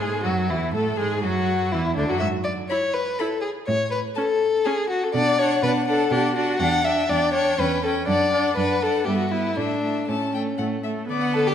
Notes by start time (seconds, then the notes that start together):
0.00 G#2 G#3 G#4
0.23 F#2 F#3 F#4
0.48 E2 E3 E4
0.74 A2 A3 A4
0.97 G#2 G#3 G#4
1.23 F#2 F#3 F#4
1.72 E2 E3 E4
1.96 D2 D3 D4
2.09 F#2 F#3 F#4
2.19 G#2 E5
2.44 D5
2.69 E4 C#5 B5
2.93 B4
3.19 E4 A4 B5
3.41 G#4
3.67 A2 C#5
3.91 B4
4.15 C#4 A4 A5
4.64 C#4 G#4 A5
4.90 F#4
5.03 A4
5.14 B2 D4 D5 F#5
5.38 D4 C#5 F#5
5.62 B2 D4 B4 F#5
5.88 D4 A4 F#5
6.11 B2 D4 G4 F#5
6.36 D4 F#4 F#5
6.59 E2 D4 F#5 G5
6.84 D4 E5 G5
7.09 E2 D4 D5 G5
7.34 D4 C#5 G5
7.58 E2 C#4 B4 G5
7.83 C#4 A4 G5
8.07 F#2 D4 D5 F#5
8.32 D4 F#5
8.56 F#2 D4 B4 F#5
8.82 D4 A4 F#5
9.05 G2 B3 G4 E5
9.18 F#4
9.31 B3 E4 E5
9.56 A2 A3 D4 E5
9.82 A3 E5
10.07 A2 A3 C#4 A5
10.33 A3 G5
10.58 A2 A3 F#5
10.83 A3 E5
11.08 D3 B3 D5
11.21 F#5
11.33 A4 A5
11.47 G4 D6